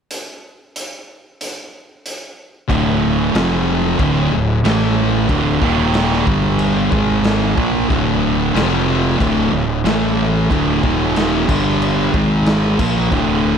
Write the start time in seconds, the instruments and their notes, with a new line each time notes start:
0.11 closed hi-hat
0.76 closed hi-hat
1.41 closed hi-hat
2.06 closed hi-hat
2.68 fingered electric bass D1, distorted electric guitar D2 A2 D3, kick, crash
3.33 fingered electric bass F1, distorted electric guitar F2 C3 F3, snare, crash
3.99 fingered electric bass D1, distorted electric guitar D2 A2 D3, kick, crash
4.32 fingered electric bass D1, distorted electric guitar D2 A2
4.64 fingered electric bass A1, distorted electric guitar A2 E3 A3, snare, crash
5.29 fingered electric bass D1, distorted electric guitar D2 A2 D3, kick, crash
5.62 fingered electric bass D#1, distorted electric guitar D#2 A#2 D#3, kick
5.94 snare, crash
6.13 snare
6.26 fingered electric bass G1, distorted electric guitar G2 D3 G3, kick
6.59 crash
6.92 fingered electric bass G#1, distorted electric guitar G#2 D#3 G#3, kick
7.24 snare, crash
7.57 fingered electric bass A#1, distorted electric guitar A#2 F3 A#3, kick
7.89 fingered electric bass D1, distorted electric guitar D2 A2 D3, kick, crash
8.54 fingered electric bass F1, distorted electric guitar F2 C3 F3, snare, crash
9.19 fingered electric bass D1, distorted electric guitar D2 A2 D3, kick, crash
9.52 fingered electric bass D1, distorted electric guitar D2 A2
9.85 fingered electric bass A1, distorted electric guitar A2 E3 A3, snare, crash
10.50 fingered electric bass D1, distorted electric guitar D2 A2 D3, kick, crash
10.83 fingered electric bass D#1, distorted electric guitar D#2 A#2 D#3, kick
11.16 snare, crash
11.48 fingered electric bass G1, distorted electric guitar G2 D3 G3, kick, crash
11.82 crash
12.13 fingered electric bass G#1, distorted electric guitar G#2 D#3 G#3, kick
12.46 snare, crash
12.78 fingered electric bass A#1, distorted electric guitar A#2 F3 A#3, kick, crash
13.10 fingered electric bass D1, distorted electric guitar D2 A2 D3, kick, crash